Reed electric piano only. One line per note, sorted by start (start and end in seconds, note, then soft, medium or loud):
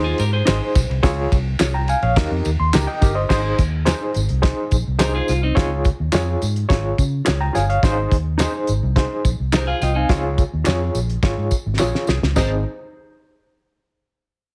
0.00 0.23 D#4 medium
0.00 0.23 G#4 medium
0.00 0.23 C5 medium
0.47 0.79 D#4 medium
0.47 0.79 G#4 medium
0.47 0.79 C5 loud
1.03 1.36 F4 loud
1.03 1.36 G#4 loud
1.03 1.36 C#5 loud
1.74 1.88 G5 medium
1.74 1.88 A#5 medium
1.89 2.01 F5 medium
1.89 2.02 G#5 medium
2.03 2.30 C#5 medium
2.03 2.30 F5 medium
2.17 2.49 D#4 medium
2.17 2.49 G4 medium
2.17 2.49 A#4 medium
2.60 2.73 C6 medium
2.74 2.86 G5 medium
2.74 2.87 A#5 medium
2.87 3.14 D#5 medium
2.87 3.14 G5 medium
3.15 3.28 C5 medium
3.15 3.42 D#5 medium
3.29 3.62 D#4 loud
3.29 3.62 G#4 medium
3.29 3.62 C5 loud
3.85 4.18 D#4 medium
3.85 4.18 G#4 medium
3.85 4.18 C5 medium
4.42 4.75 D#4 medium
4.42 4.75 G#4 medium
4.42 4.75 C5 medium
4.99 5.32 D#4 medium
4.99 5.32 G#4 medium
4.99 5.32 C5 medium
5.55 5.88 F4 loud
5.55 5.88 G#4 loud
5.55 5.88 C#5 loud
6.12 6.45 F4 medium
6.12 6.45 G#4 medium
6.12 6.45 C#5 medium
6.69 7.02 F4 medium
6.69 7.02 G#4 medium
6.69 7.02 C#5 loud
7.41 7.54 G5 medium
7.41 7.54 A#5 medium
7.55 7.68 F5 medium
7.55 7.68 G#5 medium
7.70 7.96 C#5 medium
7.70 7.96 F5 medium
7.83 8.16 D#4 loud
7.83 8.16 G#4 medium
7.83 8.16 C5 loud
8.40 8.72 D#4 medium
8.40 8.72 G#4 medium
8.40 8.72 C5 loud
8.96 9.29 D#4 medium
8.96 9.29 G#4 medium
8.96 9.28 C5 medium
9.68 9.81 F5 medium
9.83 9.96 D#5 medium
9.83 9.96 G5 medium
9.96 10.23 F5 medium
9.96 10.23 G#5 medium
10.10 10.42 F4 loud
10.10 10.42 G#4 loud
10.10 10.42 C#5 loud
10.66 10.99 F4 medium
10.66 10.98 G#4 medium
10.66 10.99 C#5 medium
11.23 11.56 F4 medium
11.23 11.55 G#4 medium
11.23 11.55 C#5 medium
11.79 12.12 F4 medium
11.79 12.12 G#4 medium
11.79 12.12 C#5 loud
12.36 12.63 C4 medium
12.36 12.63 D#4 medium
12.36 12.63 G#4 medium
12.36 12.63 D#5 medium